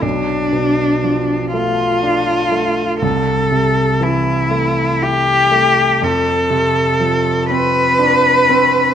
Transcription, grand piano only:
\new Staff \with { instrumentName = "Grand piano" } { \clef bass \time 3/4 \key a \minor \tempo 4 = 60 b,,8 b,8 f8 a8 d'8 a8 | c,8 c8 e8 a8 e'8 a8 | f,8 c8 f8 c'8 d'8 c'8 | }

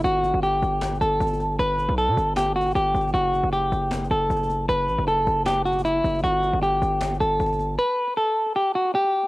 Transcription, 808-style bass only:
\new Staff \with { instrumentName = "808-style bass" } { \clef bass \time 4/4 \key fis \phrygian \tempo 4 = 155 g,,8. g,,8. g,,4 g,,8 g,,4 | g,,8. b,,8 b,16 g,,4. g,,8 g,,8 | fis,,8. fis,,8. fis,,4 fis,,8 fis,,4 | fis,,8 a,,16 fis,,8. fis,,2 fis,,8 |
g,,8. g,,8. g,,4 g,,8 g,,4 | r1 | }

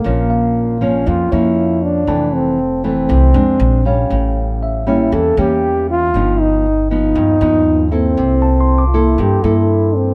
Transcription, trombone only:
\new Staff \with { instrumentName = "Trombone" } { \time 4/4 \key bes \lydian \tempo 4 = 118 bes4. des'8 f'8 e'4 d'8~ | d'8 c'4 c'2 des'8~ | des'4 r8 e'8 a'8 g'4 f'8~ | f'8 dis'4 dis'2 c'8~ |
c'4~ c'16. f'32 e'8 g'8 e'4 c'8 | }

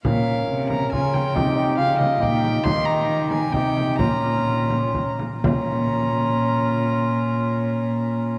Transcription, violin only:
\new Staff \with { instrumentName = "Violin" } { \time 3/4 \key bes \dorian \tempo 4 = 130 f''4. bes''8 aes''8 g''8~ | g''4 f''8 ees''8 g''4 | c'''8 bes''4 aes''8 g''4 | bes''2~ bes''8 r8 |
bes''2.~ | bes''2. | }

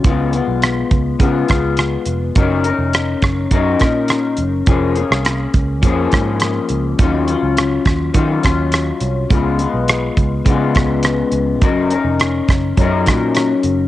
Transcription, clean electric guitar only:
\new Staff \with { instrumentName = "Clean electric guitar" } { \time 4/4 \key des \major \tempo 4 = 104 <des aes ces' f'>8 <aes ces' f'>4. <des aes ces' f'>8 <aes ces' f'>4. | <ges des' ees' bes'>8 <des' ees' bes'>4. <ges des' ees' bes'>8 <des' ees' bes'>4. | <f bes des' aes'>8 <bes des' aes'>4. <f bes des' aes'>2 | <ees ges des' f'>8 <ges des' f'>4. <ees ges des' f'>8 <ges des' f'>4. |
<des aes ces' f'>8 <aes ces' f'>4. <des aes ces' f'>2 | <ges des' ees' bes'>8 <des' ees' bes'>4. <ges des' ees' bes'>2 | }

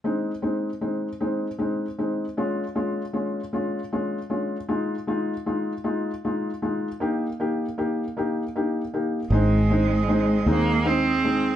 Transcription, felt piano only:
\new Staff \with { instrumentName = "Felt piano" } { \time 6/8 \key aes \major \tempo 4. = 52 <aes c' ees'>8 <aes c' ees'>8 <aes c' ees'>8 <aes c' ees'>8 <aes c' ees'>8 <aes c' ees'>8 | <aes des' f'>8 <aes des' f'>8 <aes des' f'>8 <aes des' f'>8 <aes des' f'>8 <aes des' f'>8 | <aes ees' f'>8 <aes ees' f'>8 <aes ees' f'>8 <aes ees' f'>8 <aes ees' f'>8 <aes ees' f'>8 | <bes ees' g'>8 <bes ees' g'>8 <bes ees' g'>8 <bes ees' g'>8 <bes ees' g'>8 <bes ees' g'>8 |
<aes c' ees'>8 <aes c' ees'>8 <aes c' ees'>8 <aes c' ees'>8 <aes c' ees'>8 <aes c' ees'>8 | }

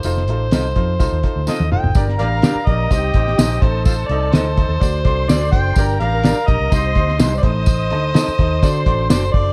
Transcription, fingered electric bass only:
\new Staff \with { instrumentName = "Fingered electric bass" } { \clef bass \time 4/4 \key g \minor \tempo 4 = 126 f,,8 a,,8 c,8 f,8 c,16 ees,16 r16 d,16 r16 ees,16 f,,16 fis,,16 | g,,8 a,,8 r8 bes,,8 c,8 a,,8 bes,,8 a,,8~ | a,,8 c,8 d,8. ees,16 d,8 c,8 d,8 fis,,8 | g,,8 a,,8. r16 bes,,16 c,16 c,8 d,8 c,8 a,,8~ |
a,,8 d,8 r8 ees,8 d8 a,,8 fis,,8 fis,,8 | }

